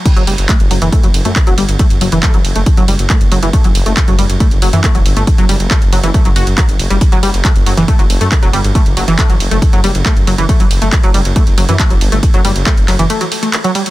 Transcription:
<<
  \new Staff \with { instrumentName = "Synth arpeggio sound" } { \clef bass \time 4/4 \key fis \phrygian \tempo 4 = 138 r16 fis16 g16 r16 a16 r16 fis16 e16 a16 fis16 r16 a16 r16 fis16 g16 r16 | a16 r16 fis16 e16 a16 fis16 r16 a16 r16 fis16 g16 r16 a16 r16 fis16 e16 | a16 fis16 r16 a16 r16 fis16 g16 r16 a16 r16 fis16 e16 a16 fis16 r16 a16 | r16 fis16 g16 r16 a16 r16 fis16 e16 a16 fis16 fis'16 r16 fis16 r8 g16 |
r16 fis16 g16 r16 a16 r16 fis16 e16 a16 fis16 r16 a16 r16 fis16 g16 r16 | a16 r16 fis16 e16 a16 fis16 r16 a16 r16 fis16 g16 r16 a16 r16 fis16 e16 | a16 fis16 r16 a16 r16 fis16 g16 r16 a16 r16 fis16 e16 a16 fis16 r16 a16 | r16 fis16 g16 r16 a16 r16 fis16 e16 a16 fis16 r16 a16 r16 fis16 g16 r16 | }
  \new Staff \with { instrumentName = "Detuned saw bass" } { \clef bass \time 4/4 \key fis \phrygian r16 fis,,16 fis,,16 fis,,16 r16 fis,,16 fis,,16 fis,,16 r16 fis,,16 fis,,16 fis,16 r16 e,,16 g,,16 g,,16 | r16 fis,,16 fis,,16 fis,,16 r16 fis,,16 fis,,16 fis,,16 r16 fis,,16 fis,,16 fis,,16 r16 fis,,16 fis,,16 fis,,16 | r16 fis,,16 fis,,16 fis,,16 r16 fis,,16 fis,,16 fis,,16 r16 fis,,16 fis,,16 fis,16 r16 e,,16 g,,16 g,,16 | r16 fis,,16 fis,,16 fis,,16 r16 fis,,16 fis,,16 fis,,16 r16 fis,,16 fis,,16 fis,,16 r16 g,,16 fis,,16 fis,,16 |
r16 fis,,16 fis,,16 fis,,16 r16 fis,,16 fis,,16 fis,,16 r16 fis,,16 fis,,16 fis,16 r16 e,,16 g,,16 g,,16 | r16 fis,,16 fis,,16 fis,,16 r16 fis,,16 fis,,16 fis,,16 r16 fis,,16 fis,,16 fis,,16 r16 fis,,16 fis,,16 fis,,16 | r16 fis,,16 fis,,16 fis,,16 r16 fis,,16 fis,,16 fis,,16 r16 fis,,16 fis,,16 fis,16 r16 e,,16 g,,16 g,,16 | r16 fis,,16 fis,,16 fis,,16 r16 fis,,16 fis,,16 fis,,16 r2 | }
  \new DrumStaff \with { instrumentName = "Drums" } \drummode { \time 4/4 <cymc hh bd cymr>16 <hh cymr>16 <hho cymr>16 <hh cymr>16 <hc hh bd cymr>16 <hh cymr>16 <hho cymr>16 <hh cymr>16 <hh bd cymr>16 <hh cymr>16 <hho cymr>16 <hh cymr>16 <hc hh bd cymr>16 <hh cymr>16 <hho cymr>16 <hh cymr>16 | <hh bd cymr>16 <hh cymr>16 <hho cymr>16 <hh cymr>16 <hc hh bd>16 <hh cymr>16 <hho cymr>16 <hh cymr>16 <hh bd cymr>16 <hh cymr>16 <hho cymr>16 <hh cymr>16 <hc hh bd cymr>16 <hh cymr>16 <hho cymr>16 <hh cymr>16 | <hh bd cymr>16 <hh cymr>16 <hho cymr>16 <hh cymr>16 <hc hh bd>16 <hh cymr>16 <hho cymr>16 <hh cymr>16 <hh bd cymr>16 <hh cymr>16 <hho cymr>16 <hh cymr>16 <hc hh bd cymr>16 <hh cymr>16 <hho cymr>16 <hh cymr>16 | <hh bd cymr>16 <hh cymr>16 <hho cymr>16 <hh cymr>16 <hc hh bd cymr>16 <hh cymr>16 <hho cymr>16 <hh cymr>16 <hh bd cymr>16 <hh cymr>16 <hho cymr>16 <hh cymr>16 <hc hh bd cymr>16 <hh cymr>16 <hho cymr>16 <hh cymr>16 |
<hh bd cymr>16 <hh cymr>16 <hho cymr>16 <hh cymr>16 <hc hh bd cymr>16 <hh cymr>16 <hho cymr>16 <hh cymr>16 <hh bd cymr>16 <hh cymr>16 <hho cymr>16 <hh cymr>16 <hc hh bd cymr>16 <hh cymr>16 <hho cymr>16 <hh cymr>16 | <hh bd cymr>16 <hh cymr>16 <hho cymr>16 <hh cymr>16 <hc hh bd cymr>16 <hh cymr>16 <hho cymr>16 <hh cymr>16 <hh bd cymr>16 <hh cymr>16 <hho cymr>16 <hh cymr>16 <hc hh bd cymr>16 <hh cymr>16 <hho cymr>16 <hh cymr>16 | <hh bd cymr>16 <hh cymr>16 <hho cymr>16 <hh cymr>16 <hc hh bd cymr>16 <hh cymr>16 <hho cymr>16 <hh cymr>16 <hh bd cymr>16 <hh cymr>16 <hho cymr>16 <hh cymr>16 <hc hh bd cymr>16 <hh cymr>16 <hho cymr>16 <hh cymr>16 | <hh bd cymr>16 <hh cymr>16 <hho cymr>16 <hh cymr>16 <hc hh bd cymr>16 <hh cymr>16 <hc hho cymr>16 <hh cymr>16 <hh cymr>16 <hh cymr>16 <hho cymr>16 <hh cymr>16 <hc hh cymr>16 <hh cymr>16 <hho cymr>16 <hh cymr>16 | }
>>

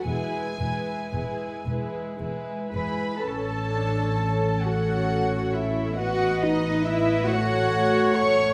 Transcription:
<<
  \new Staff \with { instrumentName = "Violin section" } { \time 6/8 \key a \major \tempo 4. = 44 gis''4. r4. | cis''4. cis''4. | dis''4. fis''4. | }
  \new Staff \with { instrumentName = "Violin section" } { \time 6/8 \key a \major <gis' b'>8 <gis' b'>8 <gis' b'>8 <gis' b'>8 <gis' b'>8 <gis' b' b''>8 | a''4. fis''4 e''8 | fis''8 dis''8 e''8 fis''4 cis'''8 | }
  \new Staff \with { instrumentName = "Cello section" } { \time 6/8 \key a \major e,8 e,8 e,8 e,8 e,8 <e, b'>8 | a'4. fis'4 e'8 | fis'8 dis'8 e'8 fis'4 cis''8 | }
  \new Staff \with { instrumentName = "Viola section" } { \time 6/8 \key a \major << { e'8 e'8 e'8 e'8 e'8 e'8 | a'2. | b'4. cis''4. | } \\ { gis8 gis8 gis8 gis8 gis8 gis8 | cis'8 d'8 cis'2 | b4. a4. | } >> }
  \new Staff \with { instrumentName = "Double bass section" } { \clef bass \time 6/8 \key a \major e,,8 e,,8 e,,8 e,,8 e,,8 e,,8 | a,,2.~ | a,,2. | }
>>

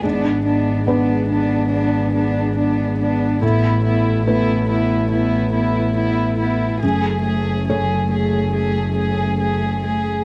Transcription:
<<
  \new Staff \with { instrumentName = "Violin section" } { \time 4/4 \key fis \minor \tempo 4 = 70 d'8 d'8 d'8 d'8 d'8 d'8 d'8 d'8 | e'8 e'8 e'8 e'8 e'8 e'8 e'8 e'8 | gis'8 gis'8 gis'8 gis'8 gis'8 gis'8 gis'8 gis'8 | }
  \new Staff \with { instrumentName = "Analog synth pad" } { \time 4/4 \key fis \minor <b d' gis'>1 | <b e' a'>1 | <a cis' gis'>1 | }
  \new Staff \with { instrumentName = "Felt piano" } { \time 4/4 \key fis \minor gis,4 <b d' b'>2. | a,4 <a e' b'>2. | fis,4 <a gis' cis''>2. | }
  \new Staff \with { instrumentName = "Cello" } { \time 4/4 \key fis \minor b8 b8 b8 b8 b8 b8 b8 b8 | b8 b8 b8 b8 b8 b8 b8 b8 | a8 a8 a8 a8 a8 a8 a8 a8 | }
  \new Staff \with { instrumentName = "Double bass" } { \clef bass \time 4/4 \key fis \minor gis,,1 | a,,1 | fis,,1 | }
>>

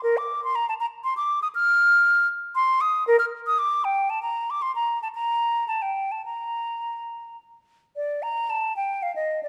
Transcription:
\new Staff \with { instrumentName = "Flute" } { \time 3/4 \key bes \major \tempo 4 = 115 bes'16 d'''8 c'''16 bes''16 a''16 bes''8 c'''16 d'''8 ees'''16 | f'''4. r8 c'''8 ees'''8 | bes'16 f'''8 ees'''16 d'''8 g''8 a''16 bes''8 d'''16 | c'''16 bes''8 a''16 bes''4 a''16 g''8 a''16 |
bes''2 r4 | d''8 bes''8 a''8 g''8 f''16 ees''8 d''16 | }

